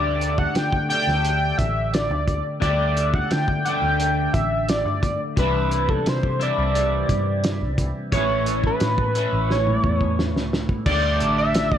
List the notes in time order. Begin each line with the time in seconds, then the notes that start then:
Already playing: D2 D3 A3 D4 G4 D5
0.21 closed hi-hat
0.38 F#5, kick
0.55 D3 G5, snare, closed hi-hat
0.73 kick
0.89 D3 A3 D4 G4 G5, closed hi-hat
1.07 D2, snare
1.25 closed hi-hat
1.58 A1 E5, kick, closed hi-hat
1.94 D5, snare, closed hi-hat
2.10 D2
2.28 kick, closed hi-hat
2.60 D2 D3 A3 D4 G4 D5, kick, closed hi-hat
2.97 closed hi-hat
3.14 F#5, kick
3.31 D3 G5, snare, closed hi-hat
3.48 kick
3.65 D3 A3 D4 G4 G5, closed hi-hat
3.82 D2
4.00 closed hi-hat
4.33 A1 E5, kick, closed hi-hat
4.69 D5, snare, closed hi-hat
4.85 G2
5.03 kick, closed hi-hat
5.36 C2 C3 E3 G3 D4 E4 B4, kick, closed hi-hat
5.71 closed hi-hat
5.89 A4, kick
6.06 C3 C5, snare, closed hi-hat
6.23 kick
6.40 C3 E3 G3 D4 E4 D5, closed hi-hat
6.58 C2
6.75 closed hi-hat
7.09 G2, kick, closed hi-hat
7.44 snare, closed hi-hat
7.61 C2
7.78 kick, closed hi-hat
8.12 A1 A2 E3 A3 C#4 E4 C#5, kick, closed hi-hat
8.46 closed hi-hat
8.64 B4, kick
8.80 A2, snare, closed hi-hat
8.98 kick
9.15 A2 E3 A3 C#4 E4, closed hi-hat
9.33 A1
9.50 C#5, snare
9.67 high tom
9.84 E2, kick
10.01 kick
10.19 snare
10.36 C#2, snare
10.53 snare
10.69 kick
10.86 D2 D3 A3 D4 G4 D5, kick, crash
11.20 A1, closed hi-hat
11.38 E5
11.54 snare, closed hi-hat
11.72 kick
11.76 D5